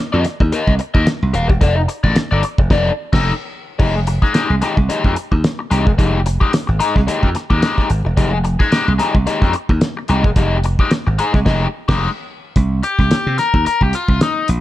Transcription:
0.12 F2 G4 A#4 D#5
0.25 muted overdriven electric guitar stroke, snare, closed hi-hat
0.40 D#2, muted overdriven electric guitar stroke, kick
0.52 G4 A#4 D#5, closed hi-hat
0.67 C2, kick
0.79 muted overdriven electric guitar stroke, closed hi-hat
0.94 D#2 G4 A#4 D#5, kick
1.07 muted overdriven electric guitar stroke, snare, closed hi-hat
1.22 C2
1.33 D#1 G4 A#4 F5, closed hi-hat
1.49 E1, muted overdriven electric guitar stroke, kick
1.61 F1 D#4 A4 D5, kick, closed hi-hat
1.76 muted overdriven electric guitar stroke
1.88 muted overdriven electric guitar stroke, closed hi-hat
2.04 A1 D#4 A4 D5, kick
2.16 muted overdriven electric guitar stroke, muted slap bass stroke, snare, closed hi-hat
2.31 G1 D#4 A4 D5
2.43 muted overdriven electric guitar stroke, closed hi-hat
2.58 F1, muted overdriven electric guitar stroke, kick
2.70 F1 D#4 A4 D5, kick, snare, crash
3.13 F1 D#4 A4 D#5, kick, snare, crash
3.79 F1 G#3 D#4 G4, kick, crash
3.95 muted overdriven electric guitar stroke
4.07 muted overdriven electric guitar stroke, closed hi-hat
4.22 G#3 D#4 G#4, kick, snare
4.34 G#3 D#4 G4, snare, closed hi-hat
4.50 C2, muted overdriven electric guitar stroke
4.62 G#3 D#4 G4, snare, closed hi-hat
4.77 C2, muted overdriven electric guitar stroke, kick
4.89 G#3 D#4 G4, muted slap bass stroke, closed hi-hat
5.04 F2, kick
5.16 muted overdriven electric guitar stroke, closed hi-hat
5.32 D#2, muted overdriven electric guitar stroke, kick
5.44 snare, closed hi-hat
5.59 muted overdriven electric guitar stroke
5.70 C2 G#3 D#4 G4, closed hi-hat
5.86 E1, muted overdriven electric guitar stroke, kick
5.98 F1 G#3 D#4 G4, kick, closed hi-hat
6.26 muted overdriven electric guitar stroke, closed hi-hat
6.40 G#3 D#4 G4, kick
6.53 muted overdriven electric guitar stroke, snare, closed hi-hat
6.67 G#1, muted overdriven electric guitar stroke
6.79 G#3 D#4 G#4, closed hi-hat
6.96 C2, muted overdriven electric guitar stroke, kick, snare
7.07 G#3 D#4 G4, muted slap bass stroke, closed hi-hat
7.23 F2, kick
7.35 muted overdriven electric guitar stroke, snare, closed hi-hat
7.50 D#2 G#3 D#4 G4, kick
7.62 G#3 D#4 G4, snare, closed hi-hat
7.78 kick, snare
7.90 G#1, muted overdriven electric guitar stroke, closed hi-hat
8.05 E1, muted overdriven electric guitar stroke
8.17 F1 G#3 D#4 G4, kick, closed hi-hat
8.32 muted overdriven electric guitar stroke
8.44 muted overdriven electric guitar stroke, closed hi-hat
8.59 G#3 D#4 G#4, kick, snare
8.71 G#3 D#4 G4, snare, closed hi-hat
8.87 C2, muted overdriven electric guitar stroke
8.98 G#3 D#4 G4, snare, closed hi-hat
9.15 C2, muted overdriven electric guitar stroke, kick
9.26 G#3 D#4 G4, muted slap bass stroke, closed hi-hat
9.42 F2, kick, snare
9.53 muted overdriven electric guitar stroke, closed hi-hat
9.69 D#2, muted overdriven electric guitar stroke, kick
9.81 snare, closed hi-hat
9.97 muted overdriven electric guitar stroke
10.08 C2 G#3 D#4 G4, closed hi-hat
10.24 E1, muted overdriven electric guitar stroke, kick
10.36 F1 G#3 D#4 G4, kick, closed hi-hat
10.64 muted overdriven electric guitar stroke, closed hi-hat
10.79 G#3 D#4 G4, kick
10.91 muted overdriven electric guitar stroke, snare, closed hi-hat
11.07 G#1, muted overdriven electric guitar stroke
11.19 G#3 D#4 G#4, closed hi-hat
11.34 C2, muted overdriven electric guitar stroke, kick, snare
11.45 F1 G#3 D#4 G4, kick, snare, crash
11.88 F1 G#3 D#4 G4, kick, snare, crash
12.56 C2, kick, closed hi-hat
12.83 G4, closed hi-hat
12.99 C2, kick, snare
13.11 muted slap bass stroke, snare, closed hi-hat
13.27 C3
13.38 A#4, snare, closed hi-hat
13.54 D#2, kick
13.66 A#4, muted slap bass stroke, closed hi-hat
13.81 C2 G4, kick
13.93 F4, closed hi-hat
14.08 C2, kick
14.21 D#4, snare, closed hi-hat
14.48 A#1, closed hi-hat

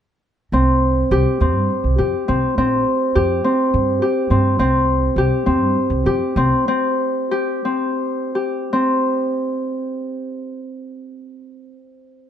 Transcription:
0.52 C2 C4
1.11 C2 G4
1.40 D#2 C4
1.55 G2
1.84 C2
1.98 F2 G4
2.28 C2 C4
2.58 A#1 C4
3.15 F2 G4
3.44 C4
3.74 G2
4.02 G4
4.30 G2 C4
4.59 C2 C4
5.16 C2 G4
5.46 D#2 C4
5.61 G2
5.90 C2
6.06 F2 G4
6.36 C2 C4
6.68 C4
7.31 G4
7.65 C4
8.35 G4
8.73 C4

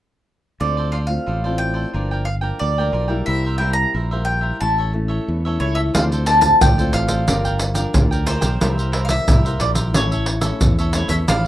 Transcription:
0.60 D2 D3 A3 C4 F4 A4 C5 D5
0.77 A4 C5 D5
0.92 F4 A4 C5 D5 F5
1.07 A3 C4 F4 F5, muted cavaquinho stroke
1.26 A1 A2 F4 A4 C5 D5
1.44 A3 C4 F4 A4 C5 D5
1.58 G5
1.74 A4 C5 D5
1.93 G1 G2 F3 A#3 D4 F4 A#4 D5 G5
2.11 A#4 D5 G5
2.25 F5, muted cavaquinho stroke
2.41 F3 A#3 D4 A#4 D5 G5
2.59 D2 D3 D5
2.78 F3 A#3 D4 A#4 D5 G5
2.92 B1 F4 A#4 D5 G5
3.08 G3 A#3 E4 A#4 D5 G5
3.26 C2 C3 E4 A#4 C5 E5
3.45 A#4 C5 E5
3.58 G3 A#3 E4 A#4 C5 E5 G5
3.73 A#5, muted cavaquinho stroke
3.94 A#1 G2 E4 A#4 C5 E5
4.11 G3 A#3 E4 A#4 C5 E5
4.25 G5
4.41 A#4 C5 E5
4.61 A1 A2 A3 C#4 E4 A4 C#5 E5 A5
4.78 A4 C#5 E5
4.93 A3 C#4 E4, muted cavaquinho stroke
5.08 A4 C#5 E5
5.28 E2 E3
5.45 A3 C#4 E4 A4 C#5 E5
5.60 C#2 E4 A4 C#5 E5
5.75 A4 C#5 E5
5.94 D2 D3 A3 C4 F4 A4 C5 D5 F5, pandeiro, shaker, surdo
6.12 A4 C5 D5, pandeiro, shaker
6.26 F4 A4 C5 D5 A5, pandeiro
6.41 A3 C4 F4 A5, pandeiro, shaker, surdo
6.61 D2 A2 F4 A4 C5 D5 G5, pandeiro, shaker, surdo
6.78 A3 C4 F4 A4 C5 D5, pandeiro, shaker
6.93 A1 F5, pandeiro, shaker
7.08 A4 C5 D5, pandeiro, shaker, surdo
7.27 G1 G3 D4 F4 A#4 D5 G5, pandeiro, shaker, surdo
7.45 A#4 D5 G5, pandeiro, shaker, surdo
7.59 muted cavaquinho stroke, pandeiro, shaker
7.74 D4 F4 A#4 D5 G5, pandeiro, shaker
7.94 D2 D3, pandeiro, shaker, surdo
8.11 A#4 D5 G5, pandeiro, shaker
8.26 D4 F4 A#4 C5 D5 G5, pandeiro, shaker
8.41 B1 A#4 D5 G5, pandeiro, shaker, surdo
8.61 C2 C3 G3 A#3 E4 A#4 C5 E5, pandeiro, shaker, surdo
8.78 A#4 C5 E5, pandeiro, shaker
8.92 E4 A#4 C5 E5, pandeiro
9.05 F5, muted cavaquinho stroke, pandeiro, shaker, surdo
9.09 G3 A#3 E4 E5
9.27 C2 G2 E4 A#4 C5 E5, pandeiro, shaker, surdo
9.45 G3 A#3 E4 A#4 C5 E5, pandeiro, shaker
9.60 A#1 D5, pandeiro
9.75 A#4 C5 E5, pandeiro, shaker, surdo
9.94 A1 A2 E3 A3 C#4 E4 A4 C#5 E5, pandeiro, shaker, surdo
10.12 A4 C#5 E5, pandeiro, shaker, surdo
10.26 muted cavaquinho stroke, pandeiro
10.41 E3 A3 C#4 A4 C#5 E5, pandeiro, shaker
10.61 E2 E3, pandeiro, shaker, surdo
10.79 A4 C#5 E5, pandeiro, shaker
10.93 E3 A3 C#4 E4 A4 C#5 E5, pandeiro, shaker
11.08 E2 A4 C#5 E5, pandeiro, shaker, surdo
11.28 A1 D3 F3 A3 D4 E4 A4 D5 F5, pandeiro, shaker, surdo

